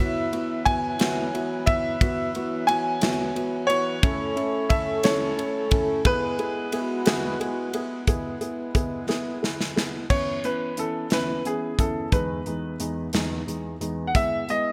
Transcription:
Already playing: E3 B3 E5
0.00 F#3 B3 E4 F#4 B4
0.33 B3 E4 F#4, ride
0.65 B3 E4 F#4 G#5, kick, ride
0.99 B3 E4 F#4, snare, ride
1.34 B3 E4 F#4, ride
1.66 B3 E4 F#4 E5, kick, ride
2.01 B3 E4 F#4, kick, ride
2.35 B3 E4 F#4, ride
2.67 B3 E4 F#4 G#5, ride
3.01 B3 E4 F#4, snare, ride
3.35 B3 E4 F#4, ride
3.67 B3 E4 F#4 C#5, ride
4.02 A3 C#4 E4 A4 C#5, kick, ride
4.36 C#4 E4 A4, ride
4.69 C#4 E4 A4 E5, kick, ride
5.03 C#4 E4 A4 C#5, snare, ride
5.37 C#4 E4 A4, ride
5.71 C#4 E4 A4, kick, ride
6.05 G#3 B3 E4 G#4 B4, kick, ride
6.38 B3 E4 G#4, ride
6.72 B3 E4 F#4 G#4, ride
7.06 B3 E4 G#4, snare, ride
7.40 B3 E4 G#4, ride
7.73 B3 E4 G#4, ride
8.07 G#3 B3 E4 G#4 B4, kick, closed hi-hat
8.41 B3 E4 G#4, closed hi-hat
8.75 B3 E4 G#4, kick, closed hi-hat
9.08 B3 E4 G#4, snare
9.42 E4 G#4, snare
9.61 snare
9.76 B3 E4 G#4, snare
10.10 E3 B3 C#4 E4 C#5, kick, crash
10.43 E3 B3 C#4 E4 B4, closed hi-hat
10.77 E3 B3 C#4 E4 A4, closed hi-hat
11.10 E3 B3 C#4 E4 B4, snare, closed hi-hat
11.45 E3 B3 C#4 E4 G#4, closed hi-hat
11.78 E3 B3 C#4 E4 A4, kick, closed hi-hat
12.12 E2 G#3 B3 D#4 B4, kick, closed hi-hat
12.46 E2 G#3 B3 D#4, closed hi-hat
12.79 E2 G#3 B3 D#4, closed hi-hat
13.13 E2 G#3 B3 D#4, snare, closed hi-hat
13.47 E2 G#3 B3 D#4, closed hi-hat
13.80 E2 G#3 B3 D#4, closed hi-hat
14.07 F#5
14.14 G#3 B3 E4 E5, kick, closed hi-hat
14.48 G#3 B3 E4 D#5, closed hi-hat

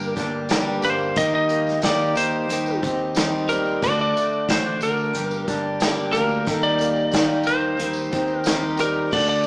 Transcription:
Already playing: G1 G2 G3 A#3 D4 G4 A#4 G5 D6
0.16 G1 G3 A#3 D4 G4, kick, snare, closed hi-hat
0.49 G2 D3 G3 A#3 D4 G4, snare, closed hi-hat, tambourine
0.66 tambourine
0.82 G1 G3 A#3 D4 G4 C5, closed hi-hat, tambourine
0.99 tambourine
1.16 D#2 D#3 G3 A#3 D#4 G4 D#5 A#5, kick, closed hi-hat, tambourine
1.33 D#5, tambourine
1.49 A#3, closed hi-hat, tambourine
1.67 snare, tambourine
1.82 D#3 G3 A#3 D#4 G4 D5, kick, snare, closed hi-hat, tambourine
2.00 tambourine
2.15 D#2 D#3 C5, closed hi-hat, tambourine
2.32 tambourine
2.49 D#2 D#3 G3 C4 D#4 G4 C5 G5, closed hi-hat, tambourine
2.66 tambourine
2.82 D#2 C4 D#4 G4, kick, closed hi-hat
3.15 D#3 G3 C4 D#4 G4, snare, closed hi-hat, tambourine
3.32 tambourine
3.49 G3 C4 D#4 G4 A#4, closed hi-hat, tambourine
3.65 tambourine
3.81 D2 D3 A3 D4 F#4 A4 D5 F#5 A5 D6, kick, closed hi-hat, tambourine
3.99 D5, tambourine
4.16 A3, closed hi-hat, tambourine
4.33 tambourine
4.48 A1 D3 A3 D4 F#4 C5, kick, snare, closed hi-hat, tambourine
4.65 tambourine
4.81 D2 D3 A#4, closed hi-hat, tambourine
4.97 tambourine
5.13 G1 G2 G3 A#3 D4 G4 A#4 G5, closed hi-hat, tambourine
5.31 tambourine
5.48 G1 G3 A#3 D4 G4, kick, snare, closed hi-hat
5.80 G2 D3 G3 A#3 D4 G4, snare, closed hi-hat, tambourine
5.97 tambourine
6.12 D2 A#3 D4 G4 A#4, closed hi-hat, tambourine
6.17 G3
6.29 tambourine
6.45 D#2 D#3 G3 A#3 D#4 G4 A#5, kick, closed hi-hat, tambourine
6.51 A4
6.61 D5, tambourine
6.79 A#3, closed hi-hat, tambourine
6.96 tambourine
7.12 D#3 G3 A#3 D#4 G4, kick, snare, closed hi-hat, tambourine
7.27 tambourine
7.43 D#2 D#3 C5, closed hi-hat, tambourine
7.61 tambourine
7.77 D#2 D#3 G3 C5, closed hi-hat, tambourine
7.81 C4 D#4 G4
7.93 tambourine
8.11 D#2 D#4 G4, kick, snare, closed hi-hat, tambourine
8.16 C4
8.27 tambourine
8.39 A#4
8.44 D#3 G3 C4 D#4, snare, closed hi-hat, tambourine
8.48 G4
8.61 tambourine
8.77 G3 D#4 G4 A#4, closed hi-hat, tambourine
8.82 C4
9.11 D2 D3 A3 D4 F#4 A4 D5 F#5 A5 D6, kick, tambourine, crash
9.27 D5, tambourine
9.43 tambourine

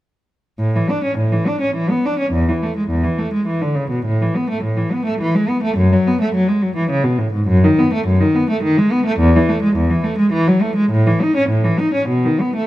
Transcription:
0.59 A2
0.76 E3
0.90 D4
1.04 C#4
1.18 A2
1.32 E3
1.48 D4
1.61 C#4
1.76 E3
1.90 B3
2.05 D4
2.19 C#4
2.33 E2
2.49 E3
2.63 A3
2.77 G#3
2.90 E2
3.04 E3
3.18 A3
3.33 G#3
3.47 E3
3.62 D3
3.75 C#3
3.91 B2
4.06 A2
4.22 E3
4.36 B3
4.50 A3
4.63 A2
4.77 E3
4.93 B3
5.06 A3
5.21 E3
5.35 G#3
5.49 B3
5.63 A3
5.77 F#2
5.93 F#3
6.07 B3
6.21 A3
6.35 F#3
6.48 G#3
6.61 F#3
6.76 E3
6.90 C#3
7.04 B2
7.18 A2
7.33 G#2
7.48 F#2
7.64 D#3
7.79 B3
7.94 A3
8.07 F#2
8.20 D#3
8.35 B3
8.50 A3
8.63 D#3
8.78 G#3
8.92 B3
9.06 A3
9.19 E2
9.36 E3
9.49 A3
9.62 G#3
9.76 E2
9.90 E3
10.04 A3
10.18 G#3
10.32 E3
10.47 F#3
10.62 A3
10.76 G#3
10.91 A2
11.07 E3
11.22 D#4
11.37 C#4
11.49 A2
11.64 E3
11.79 D#4
11.94 C#4
12.08 B2
12.25 D#3
12.40 B3
12.56 A3

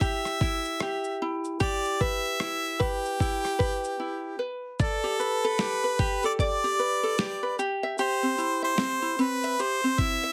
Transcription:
Already playing: E4 C5
0.01 G4 E5, kick, shaker
0.25 cross-stick, shaker
0.41 E4, kick
0.65 shaker
0.80 G4, cross-stick, shaker
1.04 shaker
1.22 E4
1.45 shaker
1.60 G4 D5, kick, shaker
1.85 shaker
2.01 B4 E5, kick, shaker
2.25 shaker
2.40 E4, cross-stick, shaker
2.65 shaker
2.80 G4 B4, kick, shaker
3.05 shaker
3.20 E4, kick, shaker
3.45 cross-stick, shaker
3.59 B4, kick, shaker
3.84 shaker
4.00 E4
4.39 B4
4.80 A4 D5, kick, shaker
5.04 G4
5.19 B4, shaker
5.44 A4 B4
5.59 G4, snare, shaker
5.84 B4
5.99 G4, kick, shaker
6.23 A4 D5, shaker
6.39 D5, kick, shaker
6.64 G4
6.79 B4, shaker
7.03 A4
7.18 G4, snare, shaker
7.43 B4
7.59 G4, shaker
7.83 E5
7.98 G4 C5, shaker
8.23 C4
8.38 E4, shaker
8.62 C5 E5
8.78 C4, snare, shaker
9.02 E4
9.19 C4 B4, shaker
9.43 E5, shaker
9.59 G4 C5, shaker
9.84 C4
9.98 E4 E5, kick, shaker
10.23 E5

